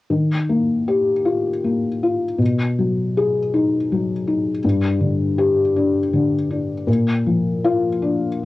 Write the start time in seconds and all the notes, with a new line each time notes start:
0.10 D#3
0.49 A#3
0.88 G4
1.25 F4
1.64 A#3
2.03 F4
2.38 B2
2.78 F#3
3.17 G#4
3.54 D#4
3.92 F#3
4.27 D#4
4.64 G2
5.00 D3
5.38 G4
5.76 D4
6.13 D3
6.51 D4
6.87 A#2
7.27 F3
7.64 F4
8.02 D4